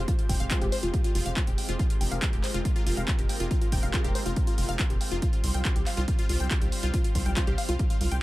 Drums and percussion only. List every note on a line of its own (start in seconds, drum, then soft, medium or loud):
0.08 kick loud
0.08 closed hi-hat medium
0.19 closed hi-hat medium
0.29 kick medium
0.29 open hi-hat loud
0.40 closed hi-hat soft
0.51 kick loud
0.51 clap loud
0.51 closed hi-hat medium
0.62 closed hi-hat medium
0.72 open hi-hat loud
0.83 closed hi-hat medium
0.94 kick loud
0.94 closed hi-hat medium
1.04 closed hi-hat medium
1.15 open hi-hat loud
1.26 closed hi-hat medium
1.36 kick loud
1.36 clap loud
1.36 closed hi-hat medium
1.47 closed hi-hat soft
1.58 open hi-hat medium
1.69 closed hi-hat medium
1.79 kick loud
1.79 closed hi-hat medium
1.90 closed hi-hat medium
2.01 open hi-hat loud
2.12 closed hi-hat soft
2.22 kick loud
2.22 clap loud
2.22 closed hi-hat medium
2.33 closed hi-hat soft
2.44 clap soft
2.44 open hi-hat medium
2.54 closed hi-hat soft
2.65 kick loud
2.65 closed hi-hat medium
2.76 closed hi-hat medium
2.87 open hi-hat loud
2.97 closed hi-hat medium
3.08 kick loud
3.08 clap loud
3.08 closed hi-hat medium
3.19 closed hi-hat medium
3.29 open hi-hat loud
3.40 closed hi-hat medium
3.51 kick loud
3.51 closed hi-hat medium
3.62 closed hi-hat soft
3.72 kick medium
3.72 open hi-hat loud
3.83 closed hi-hat soft
3.94 kick loud
3.94 clap loud
3.94 closed hi-hat medium
4.04 closed hi-hat soft
4.15 open hi-hat loud
4.26 closed hi-hat medium
4.36 kick loud
4.36 closed hi-hat medium
4.47 closed hi-hat medium
4.58 open hi-hat loud
4.69 closed hi-hat soft
4.79 kick loud
4.79 clap loud
4.79 closed hi-hat medium
4.90 closed hi-hat soft
5.01 open hi-hat loud
5.11 closed hi-hat soft
5.22 kick loud
5.22 closed hi-hat medium
5.33 closed hi-hat medium
5.44 open hi-hat loud
5.54 closed hi-hat medium
5.65 kick loud
5.65 clap loud
5.65 closed hi-hat medium
5.76 closed hi-hat soft
5.86 clap soft
5.86 open hi-hat medium
5.97 closed hi-hat medium
6.08 kick loud
6.08 closed hi-hat medium
6.19 closed hi-hat medium
6.29 open hi-hat loud
6.40 closed hi-hat medium
6.51 kick loud
6.51 clap loud
6.51 closed hi-hat medium
6.62 closed hi-hat soft
6.72 open hi-hat medium
6.83 closed hi-hat medium
6.94 kick loud
6.94 closed hi-hat medium
7.04 closed hi-hat medium
7.15 kick medium
7.15 open hi-hat loud
7.26 closed hi-hat medium
7.37 kick loud
7.37 clap loud
7.37 closed hi-hat medium
7.47 closed hi-hat soft
7.58 open hi-hat medium
7.69 closed hi-hat medium
7.79 kick loud
7.79 closed hi-hat medium
7.90 closed hi-hat medium
8.01 open hi-hat loud
8.12 closed hi-hat medium